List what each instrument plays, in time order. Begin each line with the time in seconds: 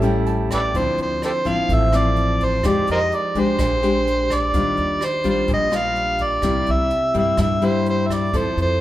Already playing: upright bass A1, nylon-string guitar A2, grand piano G4 A4 C#5 E5 A5
0.02 nylon-string guitar G3 C#4 E4, grand piano G5, closed hi-hat
0.26 grand piano A5, closed hi-hat
0.51 harmonica A4 B4 D5, grand piano G5, kick, cross-stick, closed hi-hat
0.74 upright bass D2, nylon-string guitar D3 F3 C4 E4, harmonica C5, kick, closed hi-hat
0.98 upright bass D2, closed hi-hat
1.02 harmonica C5
1.22 harmonica G4 A4 C5, cross-stick, closed hi-hat
1.45 upright bass A1, nylon-string guitar F3 C4 E4, harmonica F5, kick, closed hi-hat
1.69 upright bass A1, nylon-string guitar A2, kick, closed hi-hat
1.73 harmonica E5
1.93 nylon-string guitar F3 C4 E4, cross-stick, closed hi-hat
1.97 harmonica D5
2.16 closed hi-hat
2.40 kick, closed hi-hat
2.45 harmonica C5
2.63 upright bass F2, nylon-string guitar F3 G#3 D#4 G4, harmonica D5, kick, cross-stick, closed hi-hat
2.87 upright bass F2, closed hi-hat
2.92 harmonica A#4 C5 D#5
3.12 harmonica D5, closed hi-hat
3.35 upright bass C2, nylon-string guitar G#3 D4 G4, kick, closed hi-hat
3.40 harmonica C5
3.59 upright bass A#1, nylon-string guitar A#2, kick, cross-stick, closed hi-hat
3.82 nylon-string guitar G#3 D4 G4, closed hi-hat
4.07 closed hi-hat
4.30 harmonica D5, kick, cross-stick, closed hi-hat
4.53 upright bass D#2, nylon-string guitar D#3 G3 D4 F4, kick, closed hi-hat
4.77 upright bass D#2, closed hi-hat
5.01 cross-stick, closed hi-hat
5.06 harmonica C5
5.24 upright bass A#1, nylon-string guitar G3 D4 F4, kick, closed hi-hat
5.29 harmonica C5
5.48 upright bass A#1, nylon-string guitar A#2, kick, closed hi-hat
5.54 harmonica D#5
5.70 nylon-string guitar G3 D4 F4, cross-stick, closed hi-hat
5.76 harmonica F5
5.96 closed hi-hat
6.19 kick, closed hi-hat
6.23 harmonica D5
6.42 upright bass C2, nylon-string guitar C3 G3 A#3 E4, kick, cross-stick, closed hi-hat
6.66 upright bass C2, closed hi-hat
6.71 harmonica E5
6.91 closed hi-hat
7.14 upright bass G2, nylon-string guitar G3 A#3 E4, kick, closed hi-hat
7.18 harmonica E5
7.37 upright bass G2, nylon-string guitar G2, kick, cross-stick, closed hi-hat
7.42 harmonica E5
7.62 nylon-string guitar G3 A#3 E4, harmonica C5, closed hi-hat
7.86 harmonica C5, closed hi-hat
8.07 harmonica E5, kick, cross-stick, closed hi-hat
8.13 harmonica D5
8.33 upright bass F2, nylon-string guitar F3 C4 E4 A4, harmonica C5, kick, closed hi-hat
8.57 upright bass F2, closed hi-hat
8.62 harmonica C5